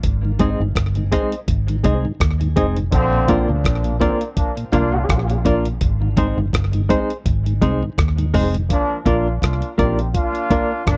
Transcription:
0.03 G#1, kick, closed hi-hat
0.25 G#2 D#3
0.39 G#3 C4 D#4 G#4 C5 D#5, kick, closed hi-hat
0.60 G1 G#2 D#3
0.75 G1, kick, cross-stick, closed hi-hat
0.95 G#2 D#3, closed hi-hat
1.12 G#3 C4 D#4 G#4 C5 D#5, kick, closed hi-hat
1.32 closed hi-hat
1.48 G#1, kick, closed hi-hat
1.68 G#2 D#3, closed hi-hat
1.83 C2 G#3 C4 D#4 G#4 C5 D#5, kick, closed hi-hat
2.05 G#2 D#3
2.20 D#2, kick, cross-stick, closed hi-hat
2.41 G#2 D#3, closed hi-hat
2.56 F1 G#3 C4 D#4 G#4 C5 D#5, kick, closed hi-hat
2.77 G#2 D#3, closed hi-hat
2.92 A#1 D3 F3 C4, kick, closed hi-hat
3.13 A#2
3.28 F3 A#3 D4 F4 A#4 D5, kick, closed hi-hat
3.48 D2 A#2 F3 A#3 D4
3.64 A#1, kick, cross-stick, closed hi-hat
3.84 A#2, closed hi-hat
4.00 F3 G#3 A#3 C4 D4 F4 A#4 D5, kick, closed hi-hat
4.21 A#4 D5, closed hi-hat
4.36 F3 A#3 D4, kick, closed hi-hat
4.57 A#2, closed hi-hat
4.72 C2 F3 A#3 D4 F4 A#4 D5, kick, closed hi-hat
4.92 A#2
5.09 A#1, kick, cross-stick, closed hi-hat
5.29 A#2, closed hi-hat
5.45 F3 A#3 D4 F4 A#4 D5, kick, closed hi-hat
5.65 A#2, closed hi-hat
5.81 G#1, kick, closed hi-hat
6.02 G#2 D#3
6.17 G#3 C4 D#4 G#4 C5, kick, closed hi-hat
6.37 G1 G#2 D#3
6.53 G1, kick, cross-stick, closed hi-hat
6.73 G#2 D#3, closed hi-hat
6.89 G#3 C4 D#4 G#4 C5, kick, closed hi-hat
7.10 G#4 C5, closed hi-hat
7.26 G#1, kick, closed hi-hat
7.46 G#2 D#3, closed hi-hat
7.61 C2 G#3 C4 D#4 G#4 C5, kick, closed hi-hat
7.83 G#2 D#3
7.98 D#2, kick, cross-stick, closed hi-hat
8.18 G#2 D#3, closed hi-hat
8.34 F1 G#3 C4 D#4 G#4 C5, kick, open hi-hat
8.54 G#2 D#3, closed hi-hat
8.70 F3 A#3 D4, kick, closed hi-hat
9.05 A#1 A#3 D4 F4 A#4 D5, kick, closed hi-hat
9.41 C2 A#3 D4 F4, kick, cross-stick, closed hi-hat
9.62 closed hi-hat
9.78 A#1 A#3 C4 D4 D#4 F4 G4 A#4 D5, kick, closed hi-hat
9.99 closed hi-hat
10.14 A#3 D4 F4, kick, closed hi-hat
10.35 closed hi-hat
10.50 A#3 D4 F4 A#4 D5, kick, closed hi-hat
10.86 G1 F3 A#3 D4, kick, cross-stick, closed hi-hat

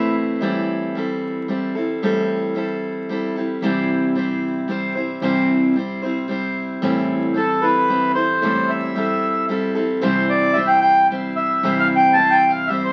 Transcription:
Already playing: A1 A3 C4 E4 B4
0.41 A2 E3 G3 C4 E4 A4
0.95 G3 C4 E4 A4
1.48 G3 C4 E4 A4
1.75 G3 C4 E4 A4
2.02 A2 E3 G3 C4 E4 A4
2.55 G3 C4 E4 A4
3.09 G3 C4 E4 A4
3.35 G3 C4 E4 A4
3.62 C2 C3 E3 G3 C4 E4 C5
4.15 G3 C4 E4 C5
4.68 G3 C4 E4 C5
4.95 G3 C4 E4 C5
5.22 C2 C3 E3 G3 C4 E4 C5
5.76 G3 C4 E4 C5
6.02 G3 C4 E4 C5
6.28 G3 C4 E4 C5
6.82 A1 A2 E3 G3 C4 E4 A4
7.34 G3 C4 E4 A4
7.62 G3 C4 E4 A4 B4
7.88 G3 C4 E4 A4
8.15 G3 C4 E4 A4 C5
8.42 A1 A2 E3 G3 C4 E4 A4
8.69 E5
8.95 G3 C4 E4 A4
9.49 G3 C4 E4 A4
9.75 G3 C4 E4 A4
10.01 C2 C3 E3 G3 C4 E4 C5
10.29 D5
10.53 G3 E5
10.57 C4 E4 C5
10.67 G5
10.81 G5
11.11 G3 C4 E4 C5
11.36 E5
11.63 C2 C3 E3 G3 C4 E4 C5
11.79 F5
11.96 G5
12.13 G3 C4 A5
12.18 E4 C5
12.30 G5
12.49 F5
12.67 G3 C4 E5
12.72 E4 C5
12.85 C5

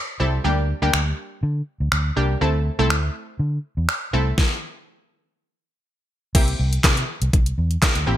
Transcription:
0.20 C2 G3 C4 E4 A4
0.44 D2 G3 A#3 D4 G4
0.82 D2 G3 A#3 D4 G4
0.94 D2, finger snap
1.43 D3
1.80 D2
1.92 D2, finger snap
2.16 C2 G3 A#3 D4 G4
2.41 D2 A3 C4 E4 A4
2.79 C2 A3 C4 E4 A4
2.90 D2, finger snap
3.39 D3
3.77 E2
3.89 finger snap
4.13 C2 A3 C4 E4 A4
4.38 kick, snare
6.35 C2 A#3 C4 E4 G4, kick, closed hi-hat, crash
6.48 closed hi-hat
6.59 C2
6.73 closed hi-hat
6.84 C3, kick, snare, clap, closed hi-hat
6.97 closed hi-hat
7.22 C2, closed hi-hat
7.33 kick, closed hi-hat
7.46 closed hi-hat
7.58 E2
7.71 closed hi-hat
7.82 kick, snare, clap, closed hi-hat
7.95 D2, closed hi-hat
8.07 A1 A#3 C4 E4 G4

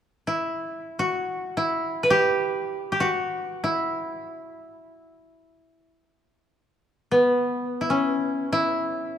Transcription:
0.27 E4
0.99 F#4
1.57 E4
2.03 B4
2.10 G4
2.92 G4
3.00 F#4
3.64 E4
7.12 B3
7.81 E4
7.90 C#4
8.53 E4

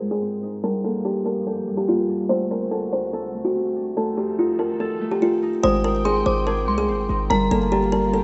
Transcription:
Already playing: G#2 G#3 C4 D#4 G#4 C5
0.01 G#3
0.11 G#4
0.22 C4
0.43 D#4
0.63 G2 F3 G3 A#3 A#4
0.84 A#3 A4
1.05 D4 G4
1.26 A#4
1.47 G4 A4
1.68 G3
1.77 G4
1.88 A#3 F4
2.09 D4
2.29 D2 C3 A3 F#4 C5
2.51 C4 A#4
2.71 D4 A4
2.93 C5
3.13 A4
3.34 A3
3.45 F#4
3.55 C4
3.76 D4
3.97 F2 D#3 A3 A4
4.17 C4 G4
4.38 D#4 F4
4.59 A#4
4.80 A4
5.01 A3
5.11 G4
5.22 C4 F4
5.43 D#4
5.63 G#1 G#3 C4 C5 G5 D#6
5.84 C4 A#4
6.05 D#4 G#4 C6
6.26 G#1 C5 D6
6.47 G#4 A#4
6.68 C2 G#3 C6
6.78 G#4
6.88 G#1 C4
7.09 G#1 D#4
7.30 G1 G3 A#3 F4 A#4 A#5
7.51 G1 A#3 A4
7.72 D4 G4
7.92 A#4
8.13 G4 A4

